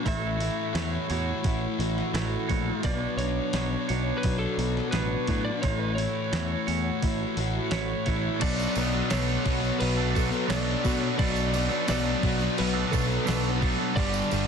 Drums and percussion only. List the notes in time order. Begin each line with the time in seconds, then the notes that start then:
0.06 kick, open hi-hat
0.41 open hi-hat
0.75 snare, open hi-hat
1.10 open hi-hat
1.44 kick, open hi-hat
1.80 open hi-hat
1.98 snare
2.15 snare, open hi-hat
2.49 kick, open hi-hat
2.83 kick, open hi-hat
3.19 open hi-hat
3.53 snare, open hi-hat
3.89 open hi-hat
4.23 kick, open hi-hat
4.59 open hi-hat
4.77 snare
4.92 snare, open hi-hat
5.27 kick, open hi-hat
5.63 kick, open hi-hat
5.98 open hi-hat
6.33 snare, open hi-hat
6.68 open hi-hat
7.02 kick, open hi-hat
7.37 open hi-hat
7.71 snare, open hi-hat
8.06 kick, open hi-hat
8.41 kick, crash
8.59 tambourine
8.75 tambourine, crash
8.92 tambourine
9.10 snare, tambourine, crash
9.29 tambourine
9.46 kick, tambourine, crash
9.64 tambourine
9.80 crash
10.15 kick, tambourine, crash
10.32 tambourine
10.50 snare, tambourine, crash
10.85 kick, tambourine, crash
11.19 kick, crash
11.36 tambourine
11.54 tambourine, crash
11.71 tambourine
11.88 snare, tambourine, crash
12.05 tambourine
12.23 kick, crash
12.40 tambourine
12.58 crash
12.93 kick, tambourine, crash
13.11 tambourine
13.27 snare, tambourine, crash
13.44 tambourine
13.62 kick, crash
13.97 kick, crash
14.14 tambourine
14.31 tambourine, crash